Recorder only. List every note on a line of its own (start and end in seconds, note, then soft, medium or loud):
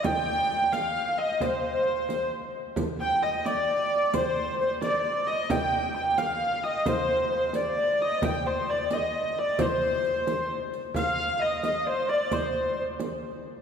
0.04 0.71 G5 loud
0.72 1.19 F5 medium
1.18 1.43 D#5 medium
1.41 1.47 D5 medium
1.46 2.32 C5 medium
3.01 3.21 G5 medium
3.23 3.29 D#5 medium
3.46 4.10 D5 medium
4.14 4.56 C5 medium
4.60 4.81 C5 medium
4.83 5.03 D5 medium
5.04 5.25 D5 medium
5.26 5.52 D#5 medium
5.50 5.95 G5 medium
5.96 6.02 G5 medium
6.18 6.60 F5 medium
6.64 6.85 D#5 medium
6.87 7.29 C5 medium
7.33 7.53 C5 medium
7.54 7.60 D5 medium
7.77 8.24 D5 medium
8.22 8.45 G5 medium
8.46 8.67 C5 medium
8.68 8.89 D5 medium
8.92 9.12 D#5 medium
9.59 10.46 C5 loud
10.95 11.41 F5 medium
11.40 11.62 D#5 medium
11.62 11.87 D#5 medium
11.85 11.91 D5 medium
11.90 12.10 C5 medium
12.08 12.30 D5 medium
12.31 12.79 C5 medium